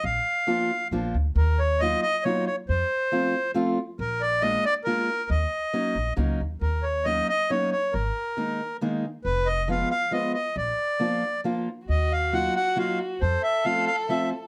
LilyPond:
<<
  \new Staff \with { instrumentName = "Accordion" } { \time 3/4 \key ees \minor \tempo 4 = 137 f''2 r4 | bes'8 des''8 ees''8 ees''8 des''8 des''8 | c''2 r4 | bes'8 d''8 ees''8 d''8 bes'4 |
ees''2 r4 | bes'8 des''8 ees''8 ees''8 des''8 des''8 | bes'2 r4 | ces''8 ees''8 f''8 f''8 ees''8 ees''8 |
d''2 r4 | ees''8 f''8 ges''8 ges''8 f''8 r8 | c''8 fes''8 f''8 f''8 fes''8 r8 | }
  \new Staff \with { instrumentName = "Violin" } { \time 3/4 \key ees \minor r2. | r2. | r2. | r2. |
r2. | r2. | r2. | r2. |
r2. | ges'2. | a'2. | }
  \new Staff \with { instrumentName = "Steel-string acoustic guitar" } { \time 3/4 \key ees \minor r4 <f bes d' f'>8 r8 <f bes d' f'>8 r8 | r4 <ges bes ees' f'>8 r8 <ges bes ees' f'>8 r8 | r4 <f a c' f'>8 r8 <f a c' f'>8 r8 | r4 <aes bes d' f'>8 r8 <aes bes d' f'>8 r8 |
r4 <ges bes des' ees'>8 r8 <ges bes des' ees'>8 r8 | r4 <ges bes des' ees'>8 r8 <ges bes des' ees'>8 r8 | r4 <ees aes bes ees'>8 r8 <ees aes bes ees'>8 r8 | r4 <f aes ces' f'>8 r8 <f aes ces' f'>8 r8 |
r4 <f bes d' f'>8 r8 <f bes d' f'>8 r8 | r4 <ges bes ees' f'>8 r8 <ges bes ees' f'>8 r8 | r4 <f a c' f'>8 r8 <f a c' f'>8 r8 | }
  \new Staff \with { instrumentName = "Upright bass" } { \clef bass \time 3/4 \key ees \minor bes,,8 r4. bes,,8 d,8 | ees,2 r4 | f,8 r2 r8 | bes,,2 r4 |
ees,8 r4 bes,,8 des,8 ees,8 | ees,2 r4 | aes,,8 r2 r8 | f,,2 r4 |
bes,,8 r2 r8 | ees,2 r4 | f,8 r2 r8 | }
>>